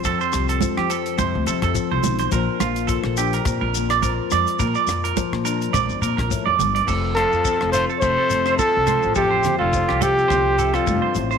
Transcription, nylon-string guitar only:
0, 0, Header, 1, 2, 480
1, 0, Start_track
1, 0, Key_signature, -1, "major"
1, 0, Tempo, 569801
1, 43, Time_signature, 4, 2, 24, 8
1, 9587, End_track
2, 0, Start_track
2, 0, Title_t, "Nylon-string guitar"
2, 0, Program_c, 0, 24
2, 0, Note_on_c, 0, 53, 61
2, 0, Note_on_c, 0, 60, 57
2, 30, Note_on_c, 0, 41, 72
2, 274, Note_on_c, 0, 67, 60
2, 299, Note_off_c, 0, 53, 0
2, 510, Note_on_c, 0, 53, 68
2, 748, Note_off_c, 0, 60, 0
2, 758, Note_on_c, 0, 60, 55
2, 991, Note_on_c, 0, 48, 69
2, 1238, Note_on_c, 0, 57, 58
2, 1462, Note_off_c, 0, 53, 0
2, 1465, Note_on_c, 0, 53, 61
2, 1477, Note_off_c, 0, 48, 0
2, 1932, Note_off_c, 0, 67, 0
2, 1934, Note_off_c, 0, 57, 0
2, 1951, Note_on_c, 0, 46, 73
2, 1954, Note_off_c, 0, 53, 0
2, 1956, Note_off_c, 0, 41, 0
2, 1957, Note_on_c, 0, 53, 60
2, 1960, Note_off_c, 0, 60, 0
2, 1962, Note_on_c, 0, 58, 62
2, 1970, Note_on_c, 0, 62, 59
2, 1974, Note_on_c, 0, 65, 73
2, 2197, Note_off_c, 0, 65, 0
2, 2200, Note_on_c, 0, 65, 61
2, 2439, Note_off_c, 0, 53, 0
2, 2442, Note_on_c, 0, 53, 66
2, 2677, Note_off_c, 0, 62, 0
2, 2680, Note_on_c, 0, 62, 53
2, 2913, Note_on_c, 0, 41, 69
2, 2916, Note_off_c, 0, 46, 0
2, 3161, Note_off_c, 0, 58, 0
2, 3172, Note_on_c, 0, 58, 57
2, 3400, Note_off_c, 0, 53, 0
2, 3403, Note_on_c, 0, 53, 60
2, 3853, Note_off_c, 0, 62, 0
2, 3859, Note_off_c, 0, 58, 0
2, 3876, Note_off_c, 0, 41, 0
2, 3882, Note_on_c, 0, 46, 68
2, 4102, Note_off_c, 0, 65, 0
2, 4113, Note_on_c, 0, 65, 63
2, 4347, Note_off_c, 0, 53, 0
2, 4350, Note_on_c, 0, 53, 69
2, 4589, Note_on_c, 0, 62, 56
2, 4831, Note_on_c, 0, 41, 65
2, 4839, Note_off_c, 0, 46, 0
2, 5078, Note_on_c, 0, 58, 61
2, 5308, Note_off_c, 0, 41, 0
2, 5311, Note_on_c, 0, 45, 60
2, 5553, Note_off_c, 0, 45, 0
2, 5557, Note_on_c, 0, 43, 66
2, 5767, Note_off_c, 0, 53, 0
2, 5767, Note_off_c, 0, 62, 0
2, 5772, Note_off_c, 0, 58, 0
2, 5783, Note_off_c, 0, 43, 0
2, 5787, Note_on_c, 0, 41, 70
2, 5796, Note_on_c, 0, 57, 58
2, 6032, Note_on_c, 0, 60, 52
2, 6274, Note_on_c, 0, 53, 56
2, 6275, Note_off_c, 0, 60, 0
2, 6278, Note_on_c, 0, 60, 60
2, 6755, Note_on_c, 0, 48, 64
2, 6759, Note_off_c, 0, 57, 0
2, 6762, Note_on_c, 0, 57, 55
2, 7226, Note_off_c, 0, 53, 0
2, 7230, Note_on_c, 0, 53, 57
2, 7237, Note_off_c, 0, 48, 0
2, 7695, Note_off_c, 0, 57, 0
2, 7713, Note_off_c, 0, 41, 0
2, 7715, Note_off_c, 0, 65, 0
2, 7723, Note_on_c, 0, 41, 70
2, 7729, Note_on_c, 0, 57, 55
2, 7959, Note_off_c, 0, 60, 0
2, 7980, Note_on_c, 0, 60, 58
2, 8206, Note_off_c, 0, 60, 0
2, 8209, Note_off_c, 0, 53, 0
2, 8213, Note_on_c, 0, 53, 63
2, 8216, Note_on_c, 0, 60, 60
2, 8684, Note_off_c, 0, 57, 0
2, 8686, Note_on_c, 0, 48, 62
2, 8693, Note_on_c, 0, 57, 59
2, 9157, Note_off_c, 0, 41, 0
2, 9161, Note_on_c, 0, 43, 58
2, 9391, Note_off_c, 0, 43, 0
2, 9394, Note_on_c, 0, 45, 61
2, 9587, Note_off_c, 0, 45, 0
2, 9587, Note_off_c, 0, 48, 0
2, 9587, Note_off_c, 0, 53, 0
2, 9587, Note_off_c, 0, 57, 0
2, 9587, Note_off_c, 0, 60, 0
2, 9587, End_track
0, 0, End_of_file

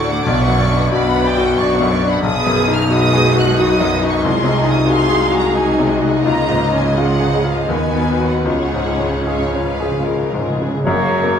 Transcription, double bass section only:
0, 0, Header, 1, 2, 480
1, 0, Start_track
1, 0, Tempo, 660066
1, 195, Time_signature, 3, 2, 24, 8
1, 4034, Tempo, 715990
1, 5474, Tempo, 788436
1, 7394, Tempo, 724638
1, 7754, End_track
2, 0, Start_track
2, 0, Title_t, "Double bass section"
2, 0, Program_c, 0, 48
2, 0, Note_on_c, 0, 38, 68
2, 140, Note_off_c, 0, 38, 0
2, 202, Note_on_c, 0, 35, 65
2, 625, Note_off_c, 0, 35, 0
2, 685, Note_on_c, 0, 35, 63
2, 1107, Note_off_c, 0, 35, 0
2, 1158, Note_on_c, 0, 35, 66
2, 1574, Note_off_c, 0, 35, 0
2, 1632, Note_on_c, 0, 35, 64
2, 3049, Note_off_c, 0, 35, 0
2, 3081, Note_on_c, 0, 36, 55
2, 4483, Note_off_c, 0, 36, 0
2, 4510, Note_on_c, 0, 37, 59
2, 5456, Note_off_c, 0, 37, 0
2, 5473, Note_on_c, 0, 39, 51
2, 5942, Note_off_c, 0, 39, 0
2, 5946, Note_on_c, 0, 37, 46
2, 7261, Note_off_c, 0, 37, 0
2, 7391, Note_on_c, 0, 30, 71
2, 7754, Note_off_c, 0, 30, 0
2, 7754, End_track
0, 0, End_of_file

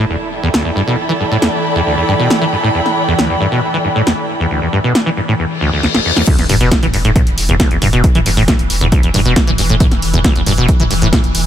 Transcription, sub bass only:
0, 0, Header, 1, 2, 480
1, 0, Start_track
1, 0, Key_signature, 1, "minor"
1, 0, Tempo, 441176
1, 1066, Time_signature, 4, 2, 24, 8
1, 12473, End_track
2, 0, Start_track
2, 0, Title_t, "Sub bass"
2, 0, Program_c, 0, 38
2, 6948, Note_on_c, 0, 28, 76
2, 7059, Note_off_c, 0, 28, 0
2, 7066, Note_on_c, 0, 28, 91
2, 7181, Note_off_c, 0, 28, 0
2, 7188, Note_on_c, 0, 28, 84
2, 7304, Note_off_c, 0, 28, 0
2, 7428, Note_on_c, 0, 28, 78
2, 7540, Note_off_c, 0, 28, 0
2, 7546, Note_on_c, 0, 28, 97
2, 7662, Note_off_c, 0, 28, 0
2, 7668, Note_on_c, 0, 28, 83
2, 7784, Note_off_c, 0, 28, 0
2, 7908, Note_on_c, 0, 28, 75
2, 8020, Note_off_c, 0, 28, 0
2, 8026, Note_on_c, 0, 28, 101
2, 8141, Note_off_c, 0, 28, 0
2, 8147, Note_on_c, 0, 28, 80
2, 8264, Note_off_c, 0, 28, 0
2, 8388, Note_on_c, 0, 28, 81
2, 8499, Note_off_c, 0, 28, 0
2, 8506, Note_on_c, 0, 28, 104
2, 8621, Note_off_c, 0, 28, 0
2, 8627, Note_on_c, 0, 28, 79
2, 8744, Note_off_c, 0, 28, 0
2, 8868, Note_on_c, 0, 28, 75
2, 8980, Note_off_c, 0, 28, 0
2, 8986, Note_on_c, 0, 28, 97
2, 9101, Note_off_c, 0, 28, 0
2, 9108, Note_on_c, 0, 28, 81
2, 9224, Note_off_c, 0, 28, 0
2, 9348, Note_on_c, 0, 28, 75
2, 9460, Note_off_c, 0, 28, 0
2, 9466, Note_on_c, 0, 28, 103
2, 9581, Note_off_c, 0, 28, 0
2, 9588, Note_on_c, 0, 28, 83
2, 9704, Note_off_c, 0, 28, 0
2, 9828, Note_on_c, 0, 28, 78
2, 9939, Note_off_c, 0, 28, 0
2, 9946, Note_on_c, 0, 28, 101
2, 10061, Note_off_c, 0, 28, 0
2, 10068, Note_on_c, 0, 28, 80
2, 10184, Note_off_c, 0, 28, 0
2, 10308, Note_on_c, 0, 28, 79
2, 10420, Note_off_c, 0, 28, 0
2, 10427, Note_on_c, 0, 28, 102
2, 10541, Note_off_c, 0, 28, 0
2, 10548, Note_on_c, 0, 28, 77
2, 10664, Note_off_c, 0, 28, 0
2, 10788, Note_on_c, 0, 28, 76
2, 10900, Note_off_c, 0, 28, 0
2, 10906, Note_on_c, 0, 28, 99
2, 11021, Note_off_c, 0, 28, 0
2, 11028, Note_on_c, 0, 28, 85
2, 11144, Note_off_c, 0, 28, 0
2, 11268, Note_on_c, 0, 28, 74
2, 11380, Note_off_c, 0, 28, 0
2, 11386, Note_on_c, 0, 28, 101
2, 11502, Note_off_c, 0, 28, 0
2, 11508, Note_on_c, 0, 28, 83
2, 11624, Note_off_c, 0, 28, 0
2, 11748, Note_on_c, 0, 28, 72
2, 11859, Note_off_c, 0, 28, 0
2, 11866, Note_on_c, 0, 28, 102
2, 11981, Note_off_c, 0, 28, 0
2, 11988, Note_on_c, 0, 28, 81
2, 12104, Note_off_c, 0, 28, 0
2, 12228, Note_on_c, 0, 28, 80
2, 12340, Note_off_c, 0, 28, 0
2, 12346, Note_on_c, 0, 28, 108
2, 12461, Note_off_c, 0, 28, 0
2, 12473, End_track
0, 0, End_of_file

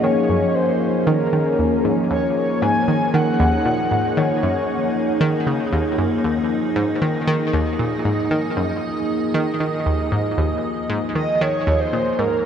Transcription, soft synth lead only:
0, 0, Header, 1, 2, 480
1, 0, Start_track
1, 0, Key_signature, -6, "minor"
1, 0, Tempo, 517241
1, 33, Time_signature, 4, 2, 24, 8
1, 11557, End_track
2, 0, Start_track
2, 0, Title_t, "Soft synth lead"
2, 0, Program_c, 0, 80
2, 28, Note_on_c, 0, 73, 97
2, 509, Note_on_c, 0, 72, 91
2, 523, Note_off_c, 0, 73, 0
2, 928, Note_off_c, 0, 72, 0
2, 928, Note_on_c, 0, 72, 58
2, 993, Note_on_c, 0, 70, 81
2, 1007, Note_off_c, 0, 72, 0
2, 1713, Note_off_c, 0, 70, 0
2, 1952, Note_on_c, 0, 73, 99
2, 2176, Note_off_c, 0, 73, 0
2, 2191, Note_on_c, 0, 73, 95
2, 2431, Note_on_c, 0, 80, 111
2, 2445, Note_off_c, 0, 73, 0
2, 2907, Note_off_c, 0, 80, 0
2, 2913, Note_on_c, 0, 78, 111
2, 3875, Note_on_c, 0, 73, 89
2, 3889, Note_off_c, 0, 78, 0
2, 4834, Note_off_c, 0, 73, 0
2, 10355, Note_on_c, 0, 75, 98
2, 10596, Note_on_c, 0, 73, 104
2, 10609, Note_off_c, 0, 75, 0
2, 10953, Note_on_c, 0, 72, 100
2, 10967, Note_off_c, 0, 73, 0
2, 11314, Note_on_c, 0, 70, 91
2, 11328, Note_off_c, 0, 72, 0
2, 11557, Note_off_c, 0, 70, 0
2, 11557, End_track
0, 0, End_of_file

